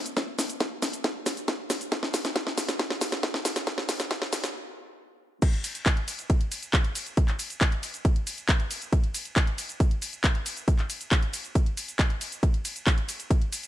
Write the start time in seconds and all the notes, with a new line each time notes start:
0.06 closed hi-hat, shaker
0.17 kick, snare, closed hi-hat, shaker
0.39 snare, open hi-hat, shaker
0.50 closed hi-hat, shaker
0.60 kick, snare, closed hi-hat, shaker
0.82 snare, open hi-hat, shaker
0.93 closed hi-hat, shaker
1.04 kick, snare, closed hi-hat, shaker
1.26 snare, open hi-hat, shaker
1.37 closed hi-hat, shaker
1.48 kick, snare, closed hi-hat, shaker
1.70 snare, open hi-hat, shaker
1.81 closed hi-hat, shaker
1.92 kick, snare, closed hi-hat, shaker
2.03 snare
2.14 snare, open hi-hat, shaker
2.25 snare, closed hi-hat, shaker
2.36 kick, snare, closed hi-hat, shaker
2.47 snare
2.58 snare, open hi-hat, shaker
2.69 snare, closed hi-hat, shaker
2.79 kick, snare, closed hi-hat, shaker
2.90 snare
3.01 snare, open hi-hat, shaker
3.12 snare, closed hi-hat, shaker
3.23 kick, snare, closed hi-hat, shaker
3.34 snare
3.45 snare, open hi-hat, shaker
3.56 snare, closed hi-hat, shaker
3.67 kick, snare, closed hi-hat, shaker
3.78 snare
3.89 snare, open hi-hat, shaker
4.00 snare, closed hi-hat, shaker
4.11 kick, snare, closed hi-hat, shaker
4.22 snare
4.33 snare, open hi-hat, shaker
4.44 snare, closed hi-hat, shaker
5.42 kick, closed hi-hat, crash, ride, shaker
5.53 closed hi-hat
5.64 open hi-hat, ride, shaker
5.75 closed hi-hat, shaker
5.86 kick, clap, closed hi-hat, ride, shaker
5.97 closed hi-hat
6.08 open hi-hat, ride, shaker
6.19 closed hi-hat, shaker
6.30 kick, closed hi-hat, ride, shaker
6.41 closed hi-hat
6.52 open hi-hat, ride, shaker
6.63 closed hi-hat, shaker
6.74 kick, clap, closed hi-hat, ride, shaker
6.84 closed hi-hat
6.95 open hi-hat, ride, shaker
7.06 closed hi-hat, shaker
7.17 kick, closed hi-hat, ride, shaker
7.28 clap, closed hi-hat
7.39 open hi-hat, ride, shaker
7.50 closed hi-hat, shaker
7.61 kick, clap, closed hi-hat, ride, shaker
7.72 closed hi-hat
7.83 open hi-hat, ride, shaker
7.94 closed hi-hat, shaker
8.05 kick, closed hi-hat, ride, shaker
8.16 closed hi-hat
8.27 open hi-hat, ride, shaker
8.38 closed hi-hat, shaker
8.49 kick, clap, closed hi-hat, ride, shaker
8.60 closed hi-hat
8.71 open hi-hat, ride, shaker
8.82 closed hi-hat, shaker
8.93 kick, closed hi-hat, ride, shaker
9.04 closed hi-hat
9.14 open hi-hat, ride, shaker
9.25 closed hi-hat, shaker
9.36 kick, clap, closed hi-hat, ride, shaker
9.47 closed hi-hat
9.58 open hi-hat, ride, shaker
9.69 closed hi-hat, shaker
9.80 kick, closed hi-hat, ride, shaker
9.91 closed hi-hat
10.02 open hi-hat, ride, shaker
10.13 closed hi-hat, shaker
10.24 kick, clap, closed hi-hat, ride, shaker
10.35 closed hi-hat
10.46 open hi-hat, ride, shaker
10.57 closed hi-hat, shaker
10.68 kick, closed hi-hat, ride, shaker
10.79 clap, closed hi-hat
10.90 open hi-hat, ride, shaker
11.01 closed hi-hat, shaker
11.12 kick, clap, closed hi-hat, ride, shaker
11.22 closed hi-hat
11.33 open hi-hat, ride, shaker
11.44 closed hi-hat, shaker
11.55 kick, closed hi-hat, ride, shaker
11.66 closed hi-hat
11.77 open hi-hat, ride, shaker
11.88 closed hi-hat, shaker
11.99 kick, clap, closed hi-hat, ride, shaker
12.10 closed hi-hat
12.21 open hi-hat, ride, shaker
12.32 closed hi-hat, shaker
12.43 kick, closed hi-hat, ride, shaker
12.54 closed hi-hat
12.65 open hi-hat, ride, shaker
12.76 closed hi-hat, shaker
12.87 kick, clap, closed hi-hat, ride, shaker
12.98 closed hi-hat
13.09 open hi-hat, ride, shaker
13.20 closed hi-hat, shaker
13.31 kick, closed hi-hat, ride, shaker
13.42 closed hi-hat
13.53 open hi-hat, ride, shaker
13.63 closed hi-hat, shaker